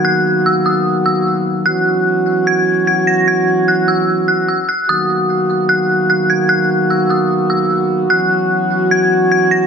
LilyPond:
<<
  \new Staff \with { instrumentName = "Synth bell" } { \time 4/4 \key b \major \tempo 4 = 149 fis'''4 e'''8 dis'''4 e'''8 r4 | fis'''2 gis'''4 gis'''8 ais'''8 | gis'''4 fis'''8 e'''4 fis'''8 e'''8 fis'''8 | dis'''2 fis'''4 fis'''8 gis'''8 |
fis'''4 e'''8 dis'''4 e'''8 r4 | fis'''2 gis'''4 gis'''8 ais'''8 | }
  \new Staff \with { instrumentName = "Brass ensemble" } { \time 4/4 \key b \major << { fis'1 | fis'1~ | fis'1 | fis'1~ |
fis'1~ | fis'1 | } \\ { <dis fis ais b>1 | <e fis b cis'>1~ | <e fis b cis'>1 | <dis fis ais b>1~ |
<dis fis ais b>1 | <e fis cis'>1 | } >> }
>>